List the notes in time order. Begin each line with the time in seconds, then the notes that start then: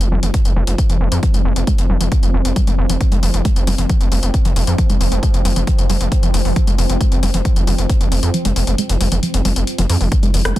Already playing: F3 C4
0.01 F1, closed hi-hat
0.12 F1 G3
0.23 F1 F3, closed hi-hat
0.34 F3, kick, closed hi-hat
0.45 F1, closed hi-hat
0.56 F1 G3
0.67 F1, closed hi-hat
0.78 kick, closed hi-hat
0.90 F1 F3, closed hi-hat
1.01 F1
1.12 F2, closed hi-hat
1.23 F3, kick, closed hi-hat
1.34 F1 G#3, closed hi-hat
1.45 F1
1.56 F1, closed hi-hat
1.67 G#3, kick, closed hi-hat
1.78 F1, closed hi-hat
1.89 F1 G3
2.01 F1 F3, closed hi-hat
2.12 F3, kick, closed hi-hat
2.23 F1, closed hi-hat
2.34 F1 C4
2.45 F1, closed hi-hat
2.56 G3, kick, closed hi-hat
2.67 F1 G#3, closed hi-hat
2.78 F1
2.90 F1 F3, closed hi-hat
3.01 F3, kick, closed hi-hat
3.12 F1 G#3, closed hi-hat
3.23 F1, open hi-hat
3.34 F1, closed hi-hat
3.45 G#3, kick, closed hi-hat
3.56 F1, closed hi-hat
3.67 F1 G3, open hi-hat
3.78 F1 F3, closed hi-hat
3.89 F3, kick, closed hi-hat
4.01 F1, closed hi-hat
4.12 F1 G3, open hi-hat
4.23 F1, closed hi-hat
4.34 kick, closed hi-hat
4.45 F1 F3, closed hi-hat
4.56 F1, open hi-hat
4.67 F2, closed hi-hat
4.78 F3, kick, closed hi-hat
4.90 F1 G#3, closed hi-hat
5.01 F1, open hi-hat
5.12 F1, closed hi-hat
5.23 G#3, kick, closed hi-hat
5.34 F1, closed hi-hat
5.45 F1 G3, open hi-hat
5.56 F1 F3, closed hi-hat
5.67 F3, kick, closed hi-hat
5.78 F1, closed hi-hat
5.90 F1 G3, open hi-hat
6.01 F1, closed hi-hat
6.12 kick, closed hi-hat
6.23 F1 F3, closed hi-hat
6.34 F1, open hi-hat
6.45 F1, open hi-hat
6.56 F3, kick, closed hi-hat
6.67 F1 G#3, closed hi-hat
6.78 F1, open hi-hat
6.89 F1, closed hi-hat
7.01 G#3, kick, closed hi-hat
7.12 F1, closed hi-hat
7.23 F1 G3, open hi-hat
7.34 F1 F3, closed hi-hat
7.45 F3, kick, closed hi-hat
7.56 F1, closed hi-hat
7.67 F1 G3, open hi-hat
7.78 F1, closed hi-hat
7.90 kick, closed hi-hat
8.01 F1 F3, closed hi-hat
8.12 F1, open hi-hat
8.23 F2, closed hi-hat
8.34 F3, closed hi-hat
8.45 F1 G#3, closed hi-hat
8.56 F1, open hi-hat
8.67 F1, closed hi-hat
8.78 G#3, closed hi-hat
8.90 F1, closed hi-hat
9.01 F1 G3, open hi-hat
9.12 F1 F3, closed hi-hat
9.23 F3, closed hi-hat
9.34 F1, closed hi-hat
9.45 F1 G3, open hi-hat
9.56 F1, closed hi-hat
9.67 closed hi-hat
9.78 F1 F3, closed hi-hat
9.89 F2, open hi-hat
10.01 F1, open hi-hat
10.12 F3 C4, kick, closed hi-hat
10.23 F1 G#3, closed hi-hat
10.34 F1, open hi-hat
10.45 F1, cross-stick, closed hi-hat
10.56 G#3, kick, closed hi-hat